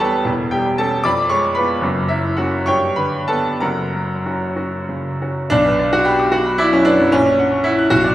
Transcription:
grand piano
Already playing: E2 G3 B4 C#5 G5 B5 C#6
0.00 B3 G4 A4 A5
0.25 E1 E2
0.51 G3 G4 G5
0.78 C#4 G4 A4 A5
1.04 F2 D5 B5 D6
1.29 G#3 C#5 C#6
1.55 B3 F4 B4 B5
1.81 F#1 F#2
2.08 F#3 E4 E5
2.37 A#3 C#4 F#4 F#5
2.66 G2 C#5 G5 C#6
2.96 D3 B4 B5
3.28 B3 A4 A5
3.60 F#1 F#2 A#4 F#5 A#5
3.94 F#3
4.26 C#4 F#4
4.56 C#4 F#4
4.89 C#3
5.22 C#4 F#4
5.50 B1 D4
5.66 B4
5.79 D5
5.92 F#4 F#5
6.05 G4 B5
6.20 D6
6.32 F#4 F#6
6.46 B5
6.58 E4 D5
6.73 F#2 C#4
6.85 D4 B4
7.00 F#2
7.12 A#1 C#4
7.26 C#5
7.39 F#5
7.52 C#6
7.64 E4 F#5
7.78 F#6
7.90 B1 F#4
8.04 D5

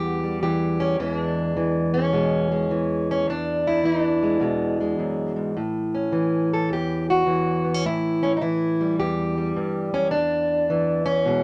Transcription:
steel-string acoustic guitar
Already playing: E2 E3 G3 G4
0.23 G3
0.42 E3 G4
0.80 C#4
0.99 E2 E3 G#3 C#4
1.17 D4
1.57 E3
1.94 C#4
2.13 B2 G#3
2.51 G#3
2.71 E3
3.11 C#4
3.28 E2 D4
3.67 E4
3.83 E3 D#4
4.04 D4
4.23 G#3
4.40 B2 G#3
4.80 G#3
4.99 F#2
5.36 G#2
5.57 A2
5.95 C#4
6.12 E3
6.53 A4
6.69 E2 G4
7.10 F#4
7.26 E3
7.65 B3
7.74 C#4
7.85 A2 E4
8.23 C#4
8.37 D#4
8.41 E3 E4
8.81 G3
8.99 E2 G4
9.38 G3
9.56 G2
9.94 F#2 C#4
10.11 E2 D4
10.70 E3
11.06 C#4
11.26 B2 G#3

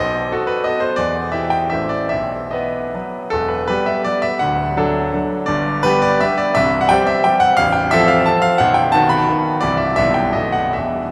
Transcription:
grand piano
Already playing: B1 D#5
0.32 F#4 A4
0.47 B4
0.64 B3 F#4 A4 D#5
0.80 C5
0.96 E2 D5
1.32 E4 G4 E5
1.50 G5
1.70 A1 A3 E4 C5 E5
1.89 D5
2.09 B1 E5
2.51 B3 B4 D#5
2.94 F#3 B3 B4
3.30 E1 E2 A4
3.48 B4
3.68 G3 B3 G4 B4
3.86 E5
4.05 G3 B3 G4 D5
4.22 E5
4.39 D1 D2 F#5
4.77 F#3 D4 A4
5.13 F#3 D4 A4
5.46 G1 G2 D5
5.83 G3 B3 G4 B4
6.02 D5
6.21 G3 B3 G4 E5
6.38 D5
6.55 C1 C2 E5
6.81 F#5
6.89 G3 C4 G4 G5
7.07 E5
7.24 G3 C4 G4 G5
7.40 F#5
7.57 A0 A1 F5
7.73 G5
7.91 F3 C4 A4 E5
8.08 F5
8.26 F3 C4 A4 A5
8.42 F5
8.58 B0 B1 F#5
8.74 G5
8.92 D#3 B3 F#4 A5
9.09 B5
9.29 D#3 B3 F#4
9.61 C1 C2 E3 G3 E4 D5
9.77 E5
9.96 B0 B1 G3 B3 E4 E5
10.14 G5
10.33 B0 B1 A3 B3 F#4 D#5
10.52 F#5
10.73 E1 E2 E5

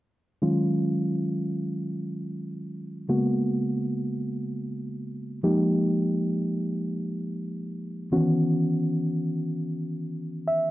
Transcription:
reed electric piano
0.42 D#3 F#3 G#3 C#4 F4
3.09 C#3 G#3 A#3 B3 F#4
5.43 F3 G#3 A#3 D#4 G4
8.12 D#3 E3 B3 C#4 F#4
10.48 E5

